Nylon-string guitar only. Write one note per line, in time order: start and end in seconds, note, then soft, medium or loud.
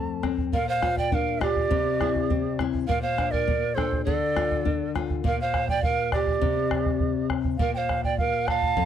0.00 0.49 F2 medium
0.00 0.22 A3 medium
0.23 0.52 C4 medium
0.53 1.68 A#2 medium
0.82 1.11 F4 medium
1.12 1.41 D4 medium
1.41 1.70 F4 medium
1.71 2.85 C3 medium
2.01 2.30 E4 medium
2.30 2.59 C4 medium
2.60 2.89 E4 medium
2.89 4.03 A#2 medium
3.18 3.47 D4 medium
3.47 3.76 A#3 medium
3.77 4.06 D4 medium
4.07 5.21 D3 medium
4.36 4.65 F4 medium
4.65 4.94 D4 medium
4.95 5.24 F4 medium
5.24 6.38 A#2 medium
6.41 7.56 C3 medium
7.59 8.74 A#2 medium
8.77 8.85 F2 medium